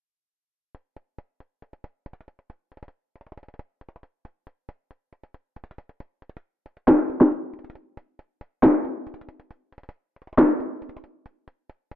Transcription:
0.75 closed hi-hat medium
0.97 closed hi-hat medium
1.18 closed hi-hat medium
1.40 closed hi-hat medium
1.62 closed hi-hat soft
1.73 closed hi-hat medium
1.84 closed hi-hat medium
2.06 closed hi-hat medium
2.13 closed hi-hat medium
2.21 closed hi-hat medium
2.28 closed hi-hat medium
2.39 closed hi-hat soft
2.50 closed hi-hat medium
2.72 closed hi-hat soft
2.77 closed hi-hat medium
2.83 closed hi-hat medium
2.88 closed hi-hat medium
3.16 closed hi-hat soft
3.21 closed hi-hat soft
3.27 closed hi-hat medium
3.32 closed hi-hat medium
3.38 closed hi-hat medium
3.43 closed hi-hat medium
3.48 closed hi-hat soft
3.54 closed hi-hat soft
3.59 closed hi-hat medium
3.81 closed hi-hat medium
3.89 closed hi-hat medium
3.96 closed hi-hat medium
4.03 closed hi-hat medium
4.25 closed hi-hat medium
4.47 closed hi-hat medium
4.69 closed hi-hat medium
4.91 closed hi-hat medium
5.13 closed hi-hat soft
5.24 closed hi-hat medium
5.34 closed hi-hat medium
5.56 closed hi-hat medium
5.64 closed hi-hat medium
5.71 closed hi-hat medium
5.78 closed hi-hat medium
5.89 closed hi-hat soft
6.00 closed hi-hat medium
6.22 closed hi-hat medium
6.29 closed hi-hat medium
6.37 closed hi-hat medium
6.66 closed hi-hat medium
6.77 closed hi-hat soft
6.88 snare loud
6.88 clap medium
6.88 closed hi-hat medium
7.10 closed hi-hat medium
7.21 snare medium
7.32 closed hi-hat medium
7.54 closed hi-hat soft
7.59 closed hi-hat soft
7.64 closed hi-hat medium
7.70 closed hi-hat medium
7.75 closed hi-hat medium
7.97 closed hi-hat medium
8.19 closed hi-hat medium
8.41 closed hi-hat medium
8.63 snare loud
8.63 clap medium
8.63 closed hi-hat soft
8.74 closed hi-hat medium
8.85 closed hi-hat medium
9.07 closed hi-hat medium
9.14 closed hi-hat medium
9.21 closed hi-hat medium
9.29 closed hi-hat medium
9.40 closed hi-hat soft
9.51 closed hi-hat medium
9.72 closed hi-hat soft
9.78 closed hi-hat medium
9.83 closed hi-hat medium
9.89 closed hi-hat medium
10.16 closed hi-hat soft
10.22 closed hi-hat soft
10.27 closed hi-hat medium
10.33 closed hi-hat medium
10.38 snare loud
10.38 clap medium
10.38 closed hi-hat medium
10.49 closed hi-hat soft
10.55 closed hi-hat soft
10.60 closed hi-hat medium
10.82 closed hi-hat medium
10.89 closed hi-hat medium
10.97 closed hi-hat medium
11.04 closed hi-hat medium
11.26 closed hi-hat medium
11.48 closed hi-hat medium
11.70 closed hi-hat medium
11.91 closed hi-hat medium

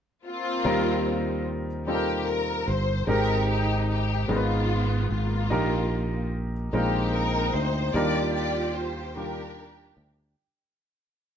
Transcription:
0.25 1.43 A#3 medium
0.25 1.42 C4 medium
0.25 1.42 F4 medium
0.64 2.63 D#2 medium
0.64 1.82 D#3 medium
0.64 1.67 G3 medium
0.64 1.67 C4 medium
0.64 1.67 D#4 medium
0.64 1.67 F4 medium
0.64 1.67 A#4 medium
1.87 2.89 G3 medium
1.87 2.89 C4 medium
1.87 2.89 D#4 soft
1.87 2.89 F4 medium
1.87 2.25 G4 medium
1.87 1.94 A4 soft
1.95 2.93 A#4 medium
2.28 2.68 A#4 medium
2.68 3.05 G1 medium
2.68 3.09 C5 medium
3.07 4.25 G#1 medium
3.07 4.25 G#2 medium
3.07 4.10 G#3 medium
3.07 4.10 C4 medium
3.07 4.10 D#4 medium
3.07 4.26 D#4 medium
3.07 4.10 G4 medium
3.07 3.49 G4 medium
3.07 3.46 A#4 medium
3.07 4.10 A#4 medium
3.50 3.89 G4 medium
3.90 4.27 G4 medium
4.28 5.06 G#1 medium
4.28 5.47 G#2 medium
4.28 5.31 G#3 medium
4.28 5.31 B3 medium
4.28 5.48 B3 medium
4.28 5.31 D#4 soft
4.28 5.31 F4 soft
4.28 5.11 F4 medium
4.28 4.36 A#4 soft
4.36 5.35 B4 medium
5.11 5.48 G#1 medium
5.11 6.29 A#3 soft
5.11 6.29 F4 medium
5.50 6.68 A#1 medium
5.50 6.69 A#2 medium
5.50 6.53 D#4 medium
5.50 6.53 G4 medium
5.50 6.53 A#4 medium
6.73 7.50 A#1 medium
6.73 7.91 A#2 medium
6.73 7.75 G#3 medium
6.73 7.75 C4 medium
6.73 7.91 C4 medium
6.73 7.75 D#4 medium
6.73 7.91 D#4 medium
6.73 7.76 F4 medium
6.73 7.11 G4 medium
6.73 7.76 A#4 medium
7.14 7.54 A#4 medium
7.54 7.91 D2 medium
7.54 7.94 C5 medium
7.94 9.93 D#2 medium
7.94 9.12 D#3 medium
7.94 8.97 G3 medium
7.94 8.97 D4 medium
7.94 8.97 D#4 medium
7.94 9.12 F4 medium
7.94 8.97 F4 medium
7.94 9.13 G4 medium
7.94 8.97 A#4 medium
7.94 8.33 D5 medium
8.34 8.72 D5 medium
8.76 9.16 C5 medium
9.16 10.19 D#3 soft
9.16 10.18 G3 medium
9.16 10.19 D4 soft
9.16 10.35 D4 medium
9.16 10.19 F4 soft
9.16 10.19 G4 medium
9.16 10.35 G4 medium
9.16 10.08 A#4 medium
9.97 10.34 D2 medium

